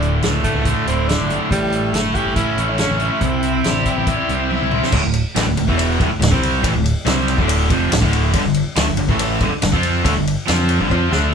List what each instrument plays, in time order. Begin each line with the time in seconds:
Already playing: picked electric bass D1, overdriven electric guitar D2 D3 A3, distorted electric guitar A2 A3, tenor saxophone D4
0.02 overdriven electric guitar A2, closed hi-hat
0.22 picked electric bass C#2, distorted electric guitar A2, overdriven electric guitar A3, snare, closed hi-hat
0.44 overdriven electric guitar D3, tenor saxophone A3, distorted electric guitar A3, kick, closed hi-hat
0.54 picked electric bass C#2
0.65 distorted electric guitar D3, overdriven electric guitar A3, kick, closed hi-hat
0.86 picked electric bass D1, overdriven electric guitar A2, tenor saxophone C4, closed hi-hat
1.08 overdriven electric guitar D3, tenor saxophone D4, snare, closed hi-hat
1.20 picked electric bass G1
1.29 overdriven electric guitar A2, closed hi-hat
1.51 picked electric bass A1, overdriven electric guitar A2, tenor saxophone G3, kick, closed hi-hat
1.72 overdriven electric guitar A3, closed hi-hat
1.92 picked electric bass G1, distorted electric guitar A3, tenor saxophone A3, overdriven electric guitar E4, snare, closed hi-hat
2.15 overdriven electric guitar C#4, distorted electric guitar E4, tenor saxophone G4, kick, closed hi-hat
2.25 picked electric bass G1
2.35 distorted electric guitar C#4, overdriven electric guitar E4, tenor saxophone E4, kick, closed hi-hat
2.57 picked electric bass A1, overdriven electric guitar A3, closed hi-hat
2.70 tenor saxophone C#4
2.77 overdriven electric guitar C#4, tenor saxophone C#4, snare, closed hi-hat
2.90 picked electric bass A1
2.99 overdriven electric guitar A3, tenor saxophone E4, closed hi-hat
3.20 picked electric bass C2, overdriven electric guitar C3, kick, closed hi-hat
3.42 overdriven electric guitar C4, closed hi-hat
3.63 picked electric bass A1, distorted electric guitar C4, overdriven electric guitar G4, lead electric guitar D5, snare, closed hi-hat
3.85 overdriven electric guitar E4, distorted electric guitar G4, kick, closed hi-hat
3.90 lead electric guitar G5
3.96 picked electric bass A1
4.06 distorted electric guitar E4, overdriven electric guitar G4, kick, closed hi-hat
4.12 lead electric guitar D5
4.28 picked electric bass C2, overdriven electric guitar C4, closed hi-hat
4.34 lead electric guitar G5
4.50 overdriven electric guitar E4, high tom
4.55 lead electric guitar E5
4.60 picked electric bass C2, mid tom
4.71 overdriven electric guitar C4, mid tom
4.83 snare
4.92 picked electric bass D1, overdriven electric guitar D2 A2, kick, crash, cowbell
5.03 picked electric bass D1, overdriven electric guitar D2 A2
5.14 ride, cowbell
5.35 picked electric bass A1, overdriven electric guitar A2 E3, snare, ride, cowbell
5.46 picked electric bass D1, overdriven electric guitar D2 A2
5.57 picked electric bass D1, overdriven electric guitar D2 A2, ride, cowbell
5.68 picked electric bass E1, overdriven electric guitar E2 B2 E3, kick
5.78 ride, cowbell
5.99 picked electric bass D1, overdriven electric guitar D2 A2, kick, ride
6.09 muted distorted electric guitar stroke, muted overdriven electric guitar stroke
6.19 picked electric bass D1, overdriven electric guitar D2 A2, snare, ride, cowbell
6.31 picked electric bass C2, overdriven electric guitar C3 G3 C4, kick
6.43 ride
6.63 picked electric bass A1, overdriven electric guitar A2 E3, kick, ride, cowbell
6.74 picked electric bass D1, overdriven electric guitar D2 A2
6.84 ride, cowbell
7.05 picked electric bass C2, overdriven electric guitar C3 G3 C4, snare, ride, cowbell
7.28 ride, cowbell
7.37 picked electric bass D1, overdriven electric guitar D2 A2 D3, kick
7.48 ride, cowbell
7.69 picked electric bass F1, overdriven electric guitar F2 C3 F3, kick, ride
7.90 picked electric bass D1, overdriven electric guitar D2 A2, snare, ride, cowbell
8.00 picked electric bass D1, overdriven electric guitar D2 A2 D3, kick
8.13 ride
8.33 picked electric bass G1, overdriven electric guitar G2 D3, kick, ride, cowbell
8.44 picked electric bass G1, overdriven electric guitar G2 D3
8.54 ride, cowbell
8.76 picked electric bass D2, overdriven electric guitar D3 A3, snare, ride, cowbell
8.87 picked electric bass G1, overdriven electric guitar G2 D3
8.97 picked electric bass G1, overdriven electric guitar G2 D3, ride, cowbell
9.09 picked electric bass A1, overdriven electric guitar A2 E3 A3, kick
9.19 ride, cowbell
9.40 picked electric bass G1, overdriven electric guitar G2 D3, kick, ride
9.51 muted distorted electric guitar stroke, muted overdriven electric guitar stroke, muted picked electric bass stroke
9.62 picked electric bass G1, overdriven electric guitar G2 D3, snare, ride, cowbell
9.72 picked electric bass F2, overdriven electric guitar F3 C4 F4, kick
9.83 ride
10.04 picked electric bass D2, overdriven electric guitar D3 A3, kick, ride, cowbell
10.14 picked electric bass G1, overdriven electric guitar G2 D3
10.27 ride, cowbell
10.46 picked electric bass F2, overdriven electric guitar F3 C4 F4, snare, ride, cowbell
10.69 ride, cowbell
10.78 picked electric bass G1, overdriven electric guitar G2 D3
10.88 picked electric bass F2, overdriven electric guitar F3 C4 F4, kick, cowbell
11.10 picked electric bass D2, overdriven electric guitar D3 A3 D4, snare